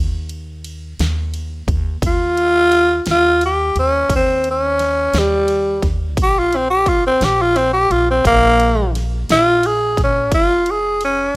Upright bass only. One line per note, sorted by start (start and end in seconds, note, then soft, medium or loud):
0.00 0.95 D#2 medium
0.99 1.64 D#2 medium
1.67 2.00 D#2 medium
2.02 3.02 D#2 medium
3.07 3.72 D#2 medium
3.76 4.07 D#2 medium
4.09 5.09 D#2 medium
5.13 5.78 D#2 medium
5.82 6.17 D#2 medium
6.17 7.17 A#1 medium
7.21 7.86 A#1 medium
7.90 8.22 A#1 medium
8.25 9.25 A#1 medium
9.29 9.94 A#1 medium
9.98 10.32 A#1 medium
10.32 11.32 F1 medium